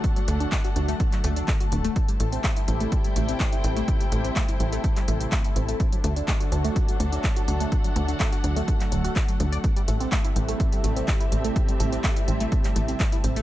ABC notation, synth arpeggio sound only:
X:1
M:4/4
L:1/16
Q:1/4=125
K:Ador
V:1 name="Synth arpeggio sound"
z F, A, D z F D A, z F, A, D z F D A, | z G, A, C A, E C A, z G, A, C z E C A, | z G, A, C A, E C A, z G, A, C z E C A, | z F, A, D A, F D A, z F, A, D z F D A, |
z F, A, D A, F D A, z F, F, F z F, F, d | z G, A, C A, E C A, z G, A, C z E C A, | z G, A, C A, E C A, z G, A, C z E C A, |]